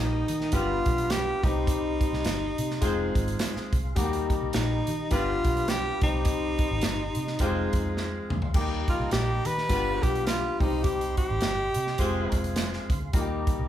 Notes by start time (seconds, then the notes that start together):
Already playing: A#1 G3 A#3 D#4 G4 A#4 G5 D#6
0.28 D#3, closed hi-hat
0.41 snare
0.52 G1 G3 B3 D4 F4 G4 B4 F5 B5, kick, closed hi-hat
0.86 B1, kick, closed hi-hat
0.98 closed hi-hat
1.10 G4, snare, closed hi-hat
1.43 C2 G3 C4 D#4 G4 D#5 C6, kick, closed hi-hat
1.67 kick, closed hi-hat
2.01 kick, closed hi-hat
2.13 C2, snare
2.24 G1, snare, closed hi-hat
2.58 C3, closed hi-hat
2.71 snare
2.81 F1 G#3 C4 F4 G#4 C5 F5, kick, closed hi-hat
3.15 G#1, kick, closed hi-hat
3.28 closed hi-hat
3.39 snare, closed hi-hat
3.56 muted fingered electric bass stroke, snare
3.73 C2, kick, closed hi-hat
3.95 D#2 G3 A#3 D#4 F#4 G4 D#5 A#5, kick, closed hi-hat
4.03 G4
4.13 closed hi-hat
4.30 kick, closed hi-hat
4.42 C2
4.53 A#1 D#4, snare, closed hi-hat
4.87 D#3, closed hi-hat
5.11 G1 G3 B3 D4 F4 B4 F5 B5, kick, closed hi-hat
5.44 B1, kick, closed hi-hat
5.57 closed hi-hat
5.68 G4, snare, closed hi-hat
6.01 C2 G3 C4 D#4 G4 D#5 C6, kick, closed hi-hat
6.25 kick, closed hi-hat
6.59 kick, closed hi-hat
6.71 G#1
6.81 G1, snare, closed hi-hat
7.15 C3, closed hi-hat
7.27 snare
7.39 F1 G#3 C4 F4 G4 G#4 C5 F5, kick, closed hi-hat
7.48 G#4
7.73 F2, kick, closed hi-hat
7.97 snare
8.30 D2, mid tom
8.42 floor tom
8.53 D#2 G3 A#3 D#4 G4 D#5 A#5, kick, crash
8.88 F4, kick, closed hi-hat
9.00 C2
9.11 A#1 G4, snare, closed hi-hat
9.45 D#3 B4, closed hi-hat
9.58 snare
9.69 G1 G3 B3 D4 F4 B4 F5, kick, closed hi-hat
10.03 B1 G4, kick, closed hi-hat
10.15 closed hi-hat
10.27 F4, snare, closed hi-hat
10.60 C2 G3 C4 D#4 G4 D#5 C6, kick, open hi-hat
10.83 G4, kick, closed hi-hat
11.01 closed hi-hat
11.17 G4, kick, closed hi-hat
11.31 G#1
11.41 snare, closed hi-hat
11.74 C3, closed hi-hat
11.87 snare
11.98 F1 G#3 C4 F4 G#4 C5 F5 C6, kick, closed hi-hat
12.32 F1, kick, closed hi-hat
12.44 closed hi-hat
12.56 snare, closed hi-hat
12.73 snare
12.90 D2, kick, closed hi-hat
13.13 D#2 G3 A#3 D#4 F4 G4 D#5 A#5, kick, closed hi-hat
13.21 G4
13.47 kick, closed hi-hat
13.60 C2